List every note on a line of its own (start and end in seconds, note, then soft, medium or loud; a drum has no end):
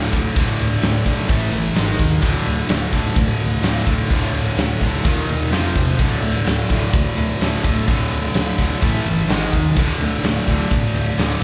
0.00 0.10 D2 medium
0.00 0.11 D2 medium
0.00 0.11 A2 medium
0.00 0.12 A2 medium
0.00 0.11 D3 medium
0.00 0.12 D3 loud
0.12 0.28 D1 medium
0.12 0.33 D2 medium
0.12 0.33 A2 medium
0.12 0.34 D3 loud
0.12 kick medium
0.12 ride medium
0.35 0.51 D1 loud
0.35 0.57 D2 medium
0.35 0.58 A2 medium
0.35 0.58 D3 medium
0.35 kick loud
0.35 ride medium
0.58 0.75 D1 medium
0.58 0.80 D2 medium
0.58 0.80 A2 medium
0.58 ride medium
0.82 0.97 D1 medium
0.82 1.03 D2 medium
0.82 1.03 A2 medium
0.82 snare loud
0.82 ride loud
1.04 1.21 A#1 medium
1.04 1.27 D2 medium
1.04 1.27 A2 medium
1.04 1.28 D3 medium
1.04 kick medium
1.04 ride medium
1.28 1.44 A1 loud
1.28 1.50 A2 medium
1.28 1.50 E3 medium
1.28 1.51 A3 loud
1.28 kick loud
1.28 ride loud
1.51 1.67 G1 medium
1.51 1.73 A2 medium
1.51 1.73 E3 medium
1.51 ride medium
1.74 1.90 G#1 medium
1.74 1.97 G#2 medium
1.74 1.97 D#3 medium
1.74 1.98 G#3 medium
1.74 snare loud
1.74 ride medium
1.98 2.14 D#1 medium
1.98 2.20 G#2 medium
1.98 2.20 D#3 medium
1.98 kick medium
1.98 ride medium
2.21 2.38 D1 loud
2.21 2.44 D2 medium
2.21 2.44 A2 medium
2.21 2.45 D3 medium
2.21 kick loud
2.21 ride medium
2.45 2.61 D1 medium
2.45 2.67 D2 medium
2.45 2.67 A2 medium
2.45 ride medium
2.68 2.84 D1 medium
2.68 2.90 D2 medium
2.68 2.90 A2 medium
2.68 snare loud
2.68 ride loud
2.91 3.08 D1 medium
2.91 3.14 D2 medium
2.91 3.14 A2 medium
2.91 3.15 D3 loud
2.91 kick medium
2.91 ride medium
3.15 3.31 D1 loud
3.15 3.37 D2 medium
3.15 3.38 A2 medium
3.15 kick loud
3.15 ride medium
3.40 3.55 D1 medium
3.40 3.61 D2 medium
3.40 3.61 A2 medium
3.40 ride medium
3.62 3.78 D1 medium
3.62 3.85 D2 medium
3.62 3.85 A2 medium
3.62 3.86 D3 medium
3.62 snare loud
3.62 ride medium
3.86 4.02 D1 medium
3.86 4.08 D2 medium
3.86 4.08 A2 medium
3.86 4.09 D3 loud
3.86 kick medium
3.86 ride medium
4.10 4.25 D1 medium
4.10 4.32 D2 medium
4.10 4.32 A2 medium
4.10 4.33 D3 medium
4.10 kick loud
4.10 ride medium
4.33 4.48 D1 medium
4.33 4.55 D2 medium
4.33 4.55 A2 medium
4.33 ride medium
4.47 snare soft
4.57 4.72 D1 medium
4.57 4.79 D2 medium
4.57 4.79 A2 loud
4.57 snare loud
4.57 ride loud
4.81 4.96 D1 medium
4.81 5.03 D2 medium
4.81 5.04 A2 medium
4.81 5.04 D3 medium
4.81 kick medium
4.81 ride medium
5.05 5.19 D#1 loud
5.05 5.27 D#2 loud
5.05 5.27 A#2 medium
5.05 5.28 D#3 loud
5.05 kick loud
5.05 ride loud
5.27 5.52 D#1 medium
5.27 5.50 D#2 medium
5.27 5.50 A#2 medium
5.27 ride medium
5.51 5.66 F1 medium
5.51 5.74 F2 medium
5.51 5.74 C3 medium
5.51 5.74 F3 medium
5.51 snare loud
5.51 ride medium
5.75 5.90 E1 medium
5.75 5.97 F2 medium
5.75 5.97 C3 medium
5.75 kick medium
5.75 ride medium
5.98 6.14 D1 loud
5.98 6.21 D2 medium
5.98 6.21 A2 medium
5.98 6.21 D3 medium
5.98 kick loud
5.98 ride medium
6.22 6.37 D1 medium
6.22 6.44 D2 medium
6.22 6.44 A2 medium
6.22 ride medium
6.36 snare soft
6.45 6.61 D1 medium
6.45 6.67 D2 medium
6.45 6.67 A2 medium
6.45 snare loud
6.45 ride medium
6.69 6.85 D1 medium
6.69 6.92 D2 medium
6.69 6.92 A2 medium
6.69 6.92 D3 medium
6.69 kick medium
6.69 ride medium
6.93 7.08 D1 medium
6.93 7.15 D2 medium
6.93 7.15 A2 medium
6.93 kick loud
6.93 ride medium
7.16 7.32 D1 medium
7.16 7.38 D2 medium
7.16 7.38 A2 medium
7.16 ride medium
7.40 7.55 D1 medium
7.40 7.62 D2 medium
7.40 7.63 A2 medium
7.40 7.63 D3 loud
7.40 snare loud
7.40 ride medium
7.62 7.79 D1 medium
7.62 7.85 D2 medium
7.62 7.85 A2 medium
7.62 7.85 D3 medium
7.62 kick medium
7.62 ride medium
7.88 8.03 D1 loud
7.88 8.09 D2 medium
7.88 8.10 A2 medium
7.88 8.10 D3 medium
7.88 kick loud
7.88 ride medium
8.11 8.27 D1 medium
8.11 8.32 D2 medium
8.11 8.32 A2 medium
8.11 ride medium
8.24 snare soft
8.34 8.50 D1 medium
8.34 8.56 D2 medium
8.34 8.56 A2 medium
8.34 snare loud
8.34 ride loud
8.58 8.73 D1 medium
8.58 8.80 D2 medium
8.58 8.79 A2 medium
8.58 8.81 D3 medium
8.58 kick medium
8.58 ride medium
8.80 8.97 A1 loud
8.80 9.03 A2 medium
8.80 9.04 E3 loud
8.80 9.04 A3 loud
8.80 kick loud
8.80 ride medium
9.05 9.20 G1 medium
9.05 9.26 A2 medium
9.05 9.26 E3 medium
9.05 ride medium
9.28 9.43 G#1 medium
9.28 9.50 G#2 medium
9.28 9.51 D#3 medium
9.28 9.51 G#3 medium
9.28 snare loud
9.28 ride loud
9.52 9.68 D#1 medium
9.52 9.73 G#2 medium
9.52 9.74 D#3 medium
9.52 kick medium
9.52 ride medium
9.75 9.92 D1 loud
9.75 9.98 D2 medium
9.75 9.98 A2 medium
9.75 9.98 D3 medium
9.75 kick loud
9.75 ride medium
9.99 10.14 D1 medium
9.99 10.21 D2 medium
9.99 10.21 A2 medium
9.99 ride medium
10.23 10.38 D1 medium
10.23 10.44 D2 medium
10.23 10.45 A2 medium
10.23 snare loud
10.23 ride loud
10.46 10.62 D1 loud
10.46 10.69 D2 medium
10.46 10.69 A2 loud
10.46 10.69 D3 loud
10.46 kick medium
10.46 ride medium
10.70 10.86 D1 medium
10.70 10.92 D2 medium
10.70 10.92 A2 medium
10.70 kick loud
10.70 ride loud
10.94 11.09 D1 medium
10.94 11.16 D2 medium
10.94 11.16 A2 medium
10.94 ride medium
11.18 11.33 D1 medium
11.18 11.40 D2 medium
11.18 11.40 A2 medium
11.18 11.41 D3 medium
11.18 snare loud
11.18 ride loud